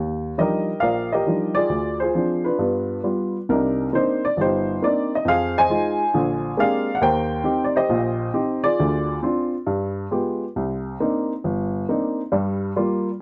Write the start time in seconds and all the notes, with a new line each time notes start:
Already playing: D#2
0.38 F3 G3 D4 D#4 G4 A#4 D#5
0.80 A#1 A#4 D5 F5
1.12 G4 A#4 D#5
1.27 F3 G3 D4 D#4
1.55 F4 G#4 D5
1.69 D2
2.00 F4 G#4 C5
2.15 F3 C4 D4
2.44 D4 F4 B4
2.59 G2 B3
3.03 G3 B3 F4
3.49 C2 C3 D4 D#4 A#4
3.93 A#3 C4 D4 D#4 C5
4.25 D5
4.37 G1 D#4 G4
4.41 C5
4.82 A#3 C4 D4 D#4 D5
5.15 D#5
5.25 F2 G#4 C5 F5
5.58 C5 D#5 G#5
5.70 G#3 D#4 F4
6.14 A#1 D3
6.57 G#3 A#3 C4 D4 G4 G#4 D5 F5
6.95 F#5
7.01 D#2 A#4 C5 G5
7.44 C4 D#4 G4
7.64 D5
7.76 G4 C5 D#5
7.89 A#1 A#2
8.34 C4 D#4 G4
8.64 F4 G#4 D5
8.79 D2 D3
9.23 C4 D4 F4
9.66 G2
10.11 G#3 B3 F4 G4
10.56 C2
11.00 A#3 C4 D4 D#4
11.44 G1
11.89 A#3 C4 D4 D#4
12.32 G2 G3
12.76 G3 A#3 F4